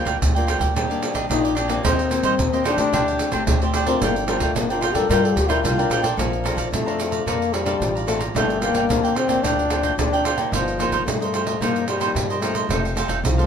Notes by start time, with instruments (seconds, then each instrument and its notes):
Already playing: nylon-string guitar D3 G3 A#3 F4
0.05 upright bass D2, cavaquinho F4 A#4 D5 G5, pandeiro
0.22 upright bass D2, nylon-string guitar D3, pandeiro
0.35 nylon-string guitar G3 A#3 F4, cavaquinho A#4 D5 G5, pandeiro
0.47 cavaquinho F4 A#4 D5 G5, pandeiro
0.59 upright bass D2, cavaquinho A#4 D5 G5, pandeiro
0.75 upright bass D#2, nylon-string guitar D#3 G3 A#3 D4, cavaquinho G4 D5 D#5, pandeiro
0.90 nylon-string guitar G3 A#3 D4, pandeiro
1.03 pandeiro
1.14 upright bass A#1, cavaquinho D4 G4 D5 D#5, pandeiro
1.29 upright bass A#1, nylon-string guitar A#2 G3 A#3 D4, cavaquinho D4 G4 D5 D#5, trombone D#4, pandeiro
1.44 cavaquinho G4 D5 D#5, pandeiro
1.55 cavaquinho D4 G4 D5 D#5, trombone D4, pandeiro
1.68 nylon-string guitar A#3 C4 G4, cavaquinho G4 D5 D#5, pandeiro
1.83 upright bass D#2, nylon-string guitar D#3, trombone C4, cavaquinho D#4 A#4 C5 D#5, pandeiro
1.99 pandeiro
2.10 nylon-string guitar A#3 C4 G4, cavaquinho D#4 A#4 C5 D#5, pandeiro
2.23 upright bass G2, cavaquinho D#4 A#4 C5 D#5, pandeiro
2.39 upright bass D#2, nylon-string guitar D#3, pandeiro
2.53 nylon-string guitar A#3 C4 G4, cavaquinho A#4 C5 D#5, pandeiro
2.64 trombone D4, cavaquinho D#4 A#4 C5 D#5, pandeiro
2.77 upright bass D#3, nylon-string guitar A3 C4 G4, cavaquinho A#4 C5 D#5, pandeiro
2.93 upright bass D2, nylon-string guitar D3, cavaquinho D4 G4 C5 D5, pandeiro
3.08 pandeiro
3.19 pandeiro
3.32 upright bass A1, nylon-string guitar A3 C4 G4, cavaquinho D4 G4 C5 D5, pandeiro
3.47 upright bass D2, nylon-string guitar A2, cavaquinho D4 G4 C5 D5, pandeiro
3.62 nylon-string guitar A3 C4 G4, cavaquinho G4 C5 D5, pandeiro
3.74 cavaquinho D4 G4 C5 D5, pandeiro
3.86 trombone C4, nylon-string guitar D4 F4 A#4, cavaquinho G4 C5 D5, pandeiro
4.01 upright bass G1, nylon-string guitar G3, trombone A#3, cavaquinho F4 A#4 D5 G5, pandeiro
4.16 trombone D3, pandeiro
4.27 trombone F3, nylon-string guitar D4 F4 A#4, cavaquinho F4 A#4 D5 G5, pandeiro
4.40 upright bass D2, trombone A3, cavaquinho F4 A#4 D5 G5, pandeiro
4.55 upright bass G1, nylon-string guitar D3, trombone A#3, pandeiro
4.70 nylon-string guitar D4 F4 A#4, trombone D4, cavaquinho A#4 D5 G5, pandeiro
4.81 cavaquinho F4 A#4 D5 G5, trombone F4, pandeiro
4.94 upright bass G2, nylon-string guitar D4 F4 A#4, trombone A4, cavaquinho A#4 D5 G5, pandeiro
5.09 upright bass G2, nylon-string guitar G3 D4 F4 A#4, cavaquinho F4 A#4 D5 G5, trombone A#4, pandeiro
5.24 trombone A4, pandeiro
5.36 upright bass D2, trombone G4, pandeiro
5.48 nylon-string guitar D4 F4 A#4, trombone E4, cavaquinho F4 A#4 D5 G5, pandeiro
5.64 upright bass C2, nylon-string guitar D3, cavaquinho F4 A#4 D5 G5, trombone F4, pandeiro
5.78 nylon-string guitar D4 F4 A#4, cavaquinho A#4 D5 G5, pandeiro
5.89 upright bass A#1, cavaquinho F4 A#4 D5 G5, pandeiro
6.02 nylon-string guitar D4 A4 C5, cavaquinho A#4 D5 G5, pandeiro
6.17 upright bass A#1, trombone F3, nylon-string guitar A#3, cavaquinho A4 D5 F5 A#5, pandeiro
6.33 pandeiro
6.44 nylon-string guitar D4 A4 C5, cavaquinho A4 D5 F5 A#5, pandeiro
6.56 upright bass A#1, cavaquinho A4 D5 F5 A#5, pandeiro
6.72 upright bass F2, nylon-string guitar F3, trombone A3, pandeiro
6.86 nylon-string guitar D4 A4 C5, cavaquinho D5 F5 A#5, pandeiro
6.98 cavaquinho A4 D5 F5 A#5, pandeiro
7.11 cavaquinho D5 F5 A#5, pandeiro
7.26 upright bass F2, nylon-string guitar A#3 D4 A4 C5, trombone A#3, cavaquinho A4 D5 F5 A#5, pandeiro
7.42 pandeiro
7.53 trombone G3, cavaquinho A4 D5 F5 A#5, pandeiro
7.65 nylon-string guitar D4 A4 C5, cavaquinho A4 D5 F5 A#5, pandeiro
7.80 upright bass A1, nylon-string guitar F3, pandeiro
7.95 cavaquinho D5 F5 A#5, pandeiro
8.07 trombone A3, nylon-string guitar D4 A4 C5, cavaquinho A4 D5 F5 A#5, pandeiro
8.19 cavaquinho D5 F5 A#5, pandeiro
8.35 upright bass G1, nylon-string guitar G2 F3 A#3 D4, trombone A3, cavaquinho F4 A#4 D5 G5, pandeiro
8.50 pandeiro
8.61 nylon-string guitar F3 A#3 D4, trombone A#3, cavaquinho F4 A#4 D5 G5, pandeiro
8.73 upright bass G1, cavaquinho F4 A#4 D5 G5, pandeiro
8.89 upright bass D2, nylon-string guitar D3 F3 A#3 D4, pandeiro
9.04 cavaquinho A#4 D5 G5, pandeiro
9.15 trombone C4, cavaquinho F4 A#4 D5 G5, pandeiro
9.28 nylon-string guitar F3 A#3 D4, cavaquinho A#4 D5 G5, pandeiro
9.43 upright bass D2, nylon-string guitar G2, trombone D4, cavaquinho F4 A#4 D5 G5, pandeiro
9.59 pandeiro
9.70 nylon-string guitar F3 A#3 D4, cavaquinho F4 A#4 D5 G5, pandeiro
9.83 cavaquinho F4 A#4 D5 G5, pandeiro
9.98 upright bass D2, nylon-string guitar D3 F3 A#3 D4, trombone D4, pandeiro
10.13 cavaquinho A#4 D5 G5, pandeiro
10.25 cavaquinho F4 A#4 D5 G5, pandeiro
10.37 nylon-string guitar F3 A#3 D#4, cavaquinho A#4 D5 G5, pandeiro
10.52 upright bass G1, nylon-string guitar G2, trombone F3, cavaquinho D#4 A#4 C5 D#5, pandeiro
10.68 pandeiro
10.78 nylon-string guitar F3 A#3 D#4, cavaquinho D#4 A#4 C5 D#5, pandeiro
10.91 upright bass G1, cavaquinho D#4 A#4 C5 D#5, pandeiro
11.06 upright bass G2, nylon-string guitar G2, trombone A3, pandeiro
11.20 nylon-string guitar F3 D#4, cavaquinho A#4 C5 D#5, pandeiro
11.33 cavaquinho D#4 A#4 C5 D#5, pandeiro
11.46 cavaquinho A#4 C5 D#5, pandeiro
11.60 upright bass G2, nylon-string guitar G2 F3 A#3 D#4, trombone A#3, cavaquinho D#4 A#4 C5 D#5, pandeiro
11.76 pandeiro
11.88 trombone G3, cavaquinho D#4 A#4 C5 D#5, pandeiro
12.00 nylon-string guitar F3 A#3 D#4, cavaquinho D#4 A#4 C5 D#5, pandeiro
12.15 nylon-string guitar G2, upright bass G2, pandeiro
12.30 cavaquinho A#4 C5 D#5, pandeiro
12.41 nylon-string guitar F3 A#3 D#4, trombone A3, cavaquinho D#4 A#4 C5 D#5, pandeiro
12.54 cavaquinho A#4 C5 D#5, pandeiro
12.69 upright bass F1, nylon-string guitar F2 D#3 A3 C4, trombone A3, cavaquinho D#4 A4 C5 F5, pandeiro
12.85 pandeiro
12.95 nylon-string guitar D#3 A3 C4, cavaquinho D#4 A4 C5 F5, pandeiro
13.08 upright bass F1, cavaquinho D#4 A4 C5 F5, pandeiro
13.24 upright bass C2, nylon-string guitar C3, trombone F3, pandeiro
13.37 nylon-string guitar D#3 A3 C4, cavaquinho A4 C5 F5, pandeiro